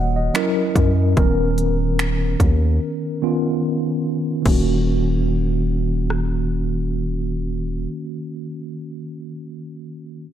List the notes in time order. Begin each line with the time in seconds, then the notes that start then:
Already playing: D#1 D#5 F#5
0.16 D#5
0.34 F#3 C#4 E4 A#4, finger snap, closed hi-hat
0.76 F#2, kick, closed hi-hat
1.16 D#1 D#3 B3 C#4 A#4, kick, closed hi-hat
1.58 closed hi-hat
1.99 finger snap, closed hi-hat
2.40 D#2, kick, closed hi-hat
3.22 D#3 B3 C#4 F4
4.42 D#1 D#3 A#3, kick, crash
4.47 C#4 F#4
6.10 cross-stick